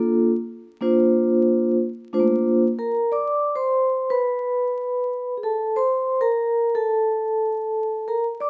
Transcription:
0.00 0.30 A#3 medium
0.00 0.30 D4 medium
0.00 0.30 F4 medium
0.00 0.30 A4 medium
0.81 1.74 A#3 medium
0.81 1.74 D4 medium
0.81 1.75 F4 medium
0.81 1.75 C5 medium
2.13 2.20 A3 medium
2.13 2.61 D4 medium
2.13 2.61 F4 medium
2.13 2.62 C5 loud
2.20 2.65 A#3 medium
2.79 3.13 A#4 medium
2.79 3.09 A#5 medium
3.12 3.57 D5 loud
3.12 3.53 D6 medium
3.56 4.12 C5 medium
3.56 4.07 C6 medium
4.10 5.32 B4 loud
4.10 5.33 B5 medium
5.37 5.43 G#4 medium
5.43 5.77 A4 medium
5.43 5.74 A5 medium
5.76 6.21 C5 medium
5.76 6.17 C6 medium
6.21 6.77 A#4 loud
6.21 6.72 A#5 medium
6.75 8.10 A4 medium
6.75 8.03 A5 medium
8.08 8.22 A#4 medium
8.08 8.23 A#5 medium
8.40 8.50 D5 loud
8.40 8.50 D6 medium

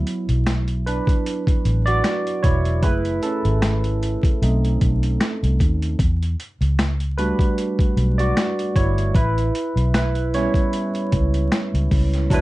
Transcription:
0.00 0.82 F#3 soft
0.00 0.82 B3 soft
0.00 0.82 E4 medium
0.07 closed hi-hat medium
0.29 0.99 B1 medium
0.29 closed hi-hat soft
0.46 finger snap medium
0.46 snare loud
0.46 closed hi-hat medium
0.68 closed hi-hat soft
0.86 1.83 D4 medium
0.86 1.90 B4 medium
0.86 closed hi-hat medium
1.07 kick medium
1.07 closed hi-hat soft
1.26 closed hi-hat medium
1.47 kick medium
1.47 closed hi-hat soft
1.65 2.00 A1 medium
1.65 closed hi-hat medium
1.86 2.40 F#4 medium
1.86 2.45 D5 medium
1.86 closed hi-hat soft
2.04 finger snap medium
2.04 snare loud
2.04 closed hi-hat medium
2.27 closed hi-hat soft
2.43 2.83 E1 medium
2.43 2.81 E4 medium
2.43 2.84 C#5 medium
2.43 kick medium
2.43 closed hi-hat medium
2.65 closed hi-hat soft
2.83 3.18 F#1 medium
2.83 3.98 A3 soft
2.83 3.21 E4 medium
2.83 3.97 G#4 soft
2.83 3.23 B4 medium
2.83 kick medium
2.83 closed hi-hat medium
3.05 closed hi-hat soft
3.23 4.77 C#4 medium
3.23 4.76 A4 medium
3.23 closed hi-hat medium
3.45 4.15 G#1 medium
3.45 closed hi-hat soft
3.62 finger snap medium
3.62 snare medium
3.62 closed hi-hat medium
3.84 closed hi-hat soft
4.03 closed hi-hat medium
4.23 kick medium
4.23 closed hi-hat soft
4.42 4.77 B1 loud
4.42 5.56 A3 soft
4.42 5.56 C4 soft
4.42 5.56 D#4 medium
4.42 closed hi-hat medium
4.65 closed hi-hat soft
4.81 5.17 B1 medium
4.81 kick medium
4.81 closed hi-hat medium
5.03 closed hi-hat soft
5.21 finger snap medium
5.21 snare loud
5.21 closed hi-hat medium
5.43 5.58 C2 medium
5.43 closed hi-hat soft
5.60 5.95 D#2 medium
5.60 kick medium
5.60 closed hi-hat medium
5.82 closed hi-hat soft
5.99 6.34 E2 medium
5.99 kick loud
5.99 closed hi-hat medium
6.23 closed hi-hat soft
6.40 closed hi-hat medium
6.61 7.31 C#2 medium
6.61 closed hi-hat soft
6.79 finger snap medium
6.79 snare loud
6.79 closed hi-hat medium
7.00 closed hi-hat soft
7.18 9.11 G3 soft
7.18 9.11 A3 soft
7.18 8.15 D4 medium
7.18 8.19 F#4 medium
7.18 8.21 B4 medium
7.18 closed hi-hat medium
7.39 kick medium
7.39 closed hi-hat soft
7.58 closed hi-hat medium
7.79 kick medium
7.79 closed hi-hat soft
7.97 8.32 B1 medium
7.97 closed hi-hat medium
8.18 8.72 F#4 medium
8.18 8.77 D5 medium
8.18 closed hi-hat soft
8.37 finger snap medium
8.37 snare loud
8.37 closed hi-hat medium
8.59 closed hi-hat soft
8.76 9.11 G1 medium
8.76 9.13 E4 medium
8.76 9.16 C#5 medium
8.76 kick medium
8.76 closed hi-hat medium
8.98 closed hi-hat soft
9.15 9.50 A1 medium
9.15 9.90 E4 medium
9.15 9.94 B4 medium
9.15 kick loud
9.15 closed hi-hat medium
9.38 closed hi-hat soft
9.55 closed hi-hat medium
9.76 10.47 B1 medium
9.76 closed hi-hat soft
9.94 10.32 E4 medium
9.94 10.35 B4 medium
9.94 finger snap medium
9.94 snare loud
9.94 closed hi-hat medium
10.15 closed hi-hat soft
10.34 10.88 G3 medium
10.34 10.88 B3 soft
10.34 10.88 C#4 medium
10.34 11.09 E4 medium
10.34 11.08 C#5 medium
10.34 snare soft
10.34 closed hi-hat medium
10.54 kick medium
10.54 closed hi-hat soft
10.73 closed hi-hat medium
10.95 closed hi-hat soft
11.12 11.48 C#2 medium
11.12 kick medium
11.12 closed hi-hat medium
11.34 closed hi-hat soft
11.52 finger snap medium
11.52 snare loud
11.52 closed hi-hat medium
11.74 11.89 C#2 medium
11.74 closed hi-hat soft
11.91 12.27 C#2 medium
11.91 kick medium
11.91 open hi-hat soft
12.14 snare soft
12.14 closed hi-hat soft
12.30 12.41 D2 medium
12.30 12.41 F#3 medium
12.30 12.41 D4 medium
12.30 12.41 E4 medium
12.30 kick medium
12.30 closed hi-hat medium
12.30 shaker medium
12.34 12.41 B4 loud

